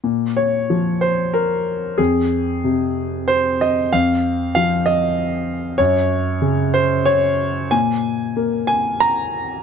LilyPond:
<<
  \new Staff \with { instrumentName = "Grand piano" } { \time 3/4 \key bes \minor \tempo 4 = 93 r8 des''4 c''8 bes'4 | aes'2 c''8 ees''8 | f''4 f''8 ees''4. | des''4. c''8 des''4 |
aes''4. aes''8 bes''4 | }
  \new Staff \with { instrumentName = "Grand piano" } { \clef bass \time 3/4 \key bes \minor bes,4 f2 | f,4 c2 | f,4 f2 | ges,4 des2 |
bes,4 bes2 | }
>>